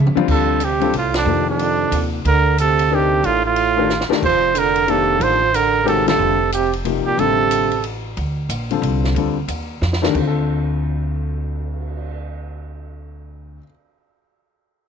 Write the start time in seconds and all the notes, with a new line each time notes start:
Already playing: C#3
0.07 mid tom
0.15 D3 G3 C4 F4, muted upright bass stroke, mid tom
0.28 D2 C3 A4, kick, crash
0.60 C3, hi-hat pedal, ride
0.65 G4
0.80 D3 G3 C4 F4 A4, ride
0.93 C2 A2, ride
0.97 F4
1.14 F2 D4, snare, ride
1.26 F2 C3 D#3 F3 A#3 G4
1.48 F2 D4
1.59 ride
1.91 D#2, hi-hat pedal, ride
2.25 D2 D3 A#4, ride
2.58 C3 A4, hi-hat pedal, ride
2.79 ride
2.91 C3 D4 D#4 G4 A4 A#4
2.95 G4
3.23 A1 A2 F4, ride
3.45 A2 F4
3.56 ride
3.76 D#3 A3 D4 G4 A#4
3.90 snare, hi-hat pedal
4.01 snare
4.09 D#3 A3 D4 G4 A#4, muted upright bass stroke, snare
4.22 F1 F3 C5, kick, crash
4.55 D3 A#4, hi-hat pedal, ride
4.76 ride
4.87 C3 D#3 A#3 D4 G4 A4, ride
5.20 A1 F3 C5, ride
5.53 D3 A#4, hi-hat pedal, ride
5.83 A#2 C3 D#3 G#3 C#4 F#4 G4 A#4
5.88 A4, ride
6.07 C3 D3 G3 C4 F4 A4, snare, ride
6.19 F1
6.52 C3 G4, hi-hat pedal, ride
6.73 ride
6.85 C3 F3 A#3 D#4 G4, ride
7.06 A#2 G4, muted upright bass stroke
7.18 A1 C3 D3 G3 C4 F4 A4, ride
7.51 hi-hat pedal, ride
7.71 ride
7.84 ride
8.17 D2, ride
8.49 A#1, hi-hat pedal, ride
8.70 D3 G3 C4 F4 A4, ride
8.82 C2, ride
9.04 snare
9.15 D2 D3 G3 C4 F4 A4, ride
9.48 D#2, hi-hat pedal, ride
9.81 F2, snare
9.93 snare
10.02 D2 D#3 A3 D4 G4 A#4, snare
10.08 D3
10.14 D2 C4, kick, crash
10.21 F4
10.27 A4
10.36 cymbal swell